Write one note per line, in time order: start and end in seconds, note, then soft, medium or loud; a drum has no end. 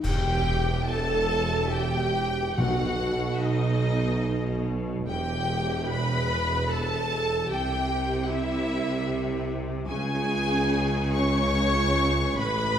0.04 2.54 E1 medium
0.04 2.53 E2 medium
0.04 0.86 G4 loud
0.04 0.86 G5 loud
0.04 concert bass drum medium
0.04 crash medium
0.89 1.73 A4 loud
0.89 1.74 A5 loud
0.89 1.73 A5 loud
1.73 2.57 G4 medium
1.73 2.57 G5 loud
2.57 5.09 B1 medium
2.57 5.03 B1 medium
2.57 5.03 B2 medium
2.57 3.78 B2 loud
2.57 3.38 F#4 medium
2.57 3.38 F#5 loud
2.57 3.33 F#5 loud
3.33 3.40 E5 medium
3.39 4.65 D#4 medium
3.39 4.65 D#5 loud
3.39 4.66 D#5 medium
5.07 7.50 E1 medium
5.07 7.50 E2 medium
5.07 5.86 G4 medium
5.07 5.86 G5 loud
5.89 6.70 B4 loud
5.89 6.70 B5 loud
5.89 6.71 B5 loud
6.70 7.50 A4 medium
6.70 7.50 A5 medium
6.70 7.50 A5 loud
7.50 9.73 C2 medium
7.50 9.86 C2 medium
7.50 9.86 C3 medium
7.50 8.27 G4 medium
7.50 8.21 G5 loud
7.50 8.29 G5 loud
8.24 8.30 F#5 medium
8.29 9.50 E4 loud
8.29 9.50 E5 medium
8.29 9.50 E5 loud
9.89 12.39 C#2 medium
9.89 12.34 C#2 medium
9.89 12.34 C#3 medium
9.89 11.12 G#4 loud
9.89 11.12 G#5 loud
11.14 12.38 C#5 loud
11.14 12.35 C#6 loud
11.14 12.38 C#6 loud
12.37 12.79 A1 medium
12.37 12.79 A2 medium
12.37 12.79 B4 loud
12.37 12.79 B5 loud